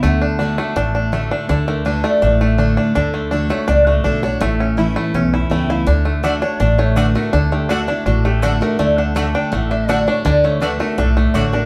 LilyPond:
<<
  \new Staff \with { instrumentName = "Resonator guitar played with a steel bar" } { \time 4/4 \key d \major \tempo 4 = 164 fis''2 r2 | a'8 bes'8 b'8 d''4 r4. | a'4. cis''8 d''8 fis'8 a'8 cis''8~ | cis''2 r4 g''8 f''8 |
r4. cis''8 d''8 cis''8 b'8 bes'8 | a'8 g'8 fis'8 e'8 fis'8 g'8 a'8 bes'8 | d''8 fis''8 a''8 g''8 fis''8 e''8 d''8 cis''8 | d''8 cis''8 b'8 bes'8 a'8 r8 cis''8 bes'8 | }
  \new Staff \with { instrumentName = "Mandolin" } { \time 4/4 \key d \major r1 | r1 | r1 | r1 |
r4 <a fis' d'' fis''>16 r4. r16 <a fis' d'' fis''>16 r8. | r4 <a fis' d'' fis''>16 r4. r16 <a fis' d'' fis''>16 r8. | r4 <a fis' d'' fis''>16 r4. r16 <a fis' d'' fis''>16 r8. | r4 <a fis' d'' fis''>16 r4. r16 <a fis' d'' fis''>16 r8. | }
  \new Staff \with { instrumentName = "Five-string banjo" } { \time 4/4 \key d \major a8 d'8 d'8 a8 d'8 d'8 a8 d'8 | d'8 a8 d'8 a8 d'8 a8 d'8 d'8 | d'8 a8 d'8 a8 d'8 a8 d'8 d'8 | a8 cis'8 e'8 a8 cis'8 e'8 a8 e'8 |
d'8 a8 d'8 d'8 d'8 a8 d'8 a8 | d'8 a8 d'8 d'8 d'8 a8 d'8 a8 | a8 d'8 a8 d'8 a8 d'8 d'8 d'8 | d'8 a8 d'8 a8 d'8 a8 d'8 d'8 | }
  \new Staff \with { instrumentName = "Steel-string acoustic guitar" } { \time 4/4 \key d \major << { r4 <d a d' fis'>8 <d' fis'>8 r4 <d a d' fis'>4 | r4 <d a d' fis'>8 <d' fis'>8 r4 <d a d' fis'>4 | r4 <d a d' fis'>8 <d' fis'>8 r4 <d a d' fis'>8 <d' fis'>8 | r4 <e a cis' e'>4 r4 <e a cis' e'>4 |
r4 <d a d' fis'>8 <d' fis'>8 r4 <d a d' fis'>8 <d' fis'>8 | r4 <d a d' fis'>8 <d' fis'>8 r4 <d a d' fis'>8 <d' fis'>8 | r4 <d a d' fis'>4 r4 <d a d' fis'>8 <d' fis'>8 | r4 <d a d' fis'>8 <d' fis'>8 r4 <d a d' fis'>8 <d' fis'>8 | } \\ { d2 a,2 | d2 a,2 | d2 a,2 | a,2 e,2 |
d2 a,2 | d2 a,2 | d2 a,2 | d2 a,2 | } >> }
  \new Staff \with { instrumentName = "Upright bass" } { \clef bass \time 4/4 \key d \major d,2 a,,2 | d,2 a,,2 | d,2 cis,4 b,,4 | a,,2 b,,4 cis,4 |
d,2 a,,2 | d,2 a,,2 | d,2 a,,2 | d,2 b,,4 a,,4 | }
>>